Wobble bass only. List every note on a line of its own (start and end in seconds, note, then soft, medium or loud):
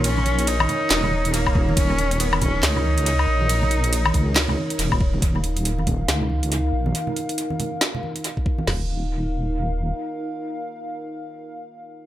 0.00 0.67 A#1 loud
0.91 1.75 D#1 loud
1.77 2.62 D#1 loud
2.63 3.26 C#2 loud
3.28 4.13 A#1 loud
4.14 4.56 C#2 loud
4.79 5.21 D#1 loud
5.22 6.07 D#1 medium
6.08 6.72 C#2 loud
6.73 6.93 A#1 loud
8.67 9.93 D#1 medium